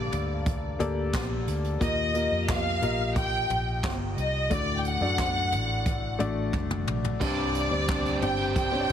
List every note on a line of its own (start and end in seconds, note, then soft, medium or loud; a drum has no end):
0.00 1.82 G2 medium
0.00 1.82 D3 medium
0.00 0.79 A#3 medium
0.00 0.80 G4 medium
0.00 0.80 A4 medium
0.00 0.13 D5 medium
0.00 0.66 D5 medium
0.00 1.83 F5 medium
0.12 0.76 D2 medium
0.12 closed hi-hat medium
0.12 floor tom medium
0.46 kick loud
0.46 closed hi-hat medium
0.79 1.11 D2 medium
0.79 1.68 A#3 medium
0.79 1.68 G4 medium
0.79 1.69 A4 medium
0.79 1.69 D5 medium
0.79 closed hi-hat medium
0.79 floor tom medium
1.13 1.45 A#1 medium
1.13 kick medium
1.13 snare loud
1.13 clap medium
1.13 closed hi-hat medium
1.47 1.79 D2 medium
1.47 closed hi-hat medium
1.64 closed hi-hat soft
1.80 2.28 D#2 medium
1.80 2.78 A#2 medium
1.80 2.10 A#3 medium
1.80 2.10 F4 medium
1.80 2.11 G4 medium
1.80 2.11 D#5 medium
1.80 2.45 D#5 medium
1.80 kick medium
1.80 closed hi-hat medium
2.14 2.74 A#3 medium
2.14 2.74 F4 medium
2.14 2.74 G4 medium
2.14 2.74 D#5 medium
2.14 closed hi-hat medium
2.31 2.79 F2 medium
2.48 3.16 F5 medium
2.48 kick medium
2.48 snare medium
2.48 clap medium
2.48 closed hi-hat medium
2.82 3.45 A#1 medium
2.82 4.00 A#3 medium
2.82 4.01 F4 medium
2.82 4.01 G4 medium
2.82 4.01 D#5 medium
2.82 closed hi-hat medium
2.82 floor tom medium
3.16 3.80 G5 medium
3.16 kick loud
3.16 closed hi-hat medium
3.50 3.81 A#1 medium
3.50 closed hi-hat medium
3.50 floor tom medium
3.83 kick loud
3.83 snare loud
3.83 clap medium
3.83 closed hi-hat medium
4.17 4.48 C2 medium
4.17 4.49 D#5 medium
4.17 closed hi-hat medium
4.50 4.98 D2 medium
4.50 5.48 A2 medium
4.50 4.95 A3 medium
4.50 4.95 D4 medium
4.50 4.95 F#4 medium
4.50 4.95 D5 medium
4.50 4.78 D5 medium
4.50 kick medium
4.50 closed hi-hat medium
4.77 4.85 G5 medium
4.84 6.20 F#5 loud
4.84 closed hi-hat medium
5.01 5.53 F#2 medium
5.01 6.05 A3 medium
5.01 6.05 D4 medium
5.01 6.05 F#4 medium
5.01 6.05 D5 medium
5.18 kick medium
5.18 snare medium
5.18 clap medium
5.18 closed hi-hat medium
5.52 6.16 A1 medium
5.52 closed hi-hat medium
5.52 floor tom medium
5.86 kick loud
5.86 closed hi-hat medium
6.19 6.51 A1 medium
6.19 7.08 A3 medium
6.19 7.08 D4 medium
6.19 7.08 F#4 medium
6.19 7.09 D5 medium
6.19 closed hi-hat medium
6.19 floor tom medium
6.53 kick medium
6.53 high tom soft
6.71 mid tom soft
6.87 7.18 A#1 medium
6.87 mid tom medium
7.04 floor tom medium
7.20 7.68 C2 medium
7.20 8.18 G2 soft
7.20 7.86 G3 medium
7.20 7.65 C4 medium
7.20 7.87 C4 medium
7.20 7.65 D4 medium
7.20 7.89 D4 medium
7.20 7.65 G4 medium
7.20 7.89 G4 medium
7.20 8.18 D5 medium
7.20 7.66 D5 medium
7.20 kick medium
7.20 crash medium
7.55 closed hi-hat medium
7.71 8.18 D2 medium
7.71 8.16 C4 medium
7.71 8.16 D4 medium
7.71 8.16 G4 medium
7.71 8.16 D5 medium
7.87 8.38 G3 medium
7.87 8.39 C4 medium
7.87 8.38 D4 medium
7.87 8.37 G4 medium
7.87 kick loud
7.87 snare medium
7.87 clap medium
7.87 closed hi-hat medium
8.06 closed hi-hat soft
8.22 8.86 G1 medium
8.22 8.66 C4 medium
8.22 8.66 D4 medium
8.22 8.67 G4 medium
8.22 8.67 D5 medium
8.22 8.54 G5 medium
8.22 closed hi-hat medium
8.22 floor tom medium
8.38 8.73 C4 soft
8.38 8.72 D4 soft
8.38 8.70 G4 medium
8.56 8.92 G5 medium
8.56 kick loud
8.56 closed hi-hat medium
8.71 8.92 C4 medium
8.71 8.92 C4 soft
8.71 8.92 D4 medium
8.71 8.92 D4 soft
8.71 8.92 G4 medium
8.71 8.79 C#5 medium
8.80 8.92 D5 medium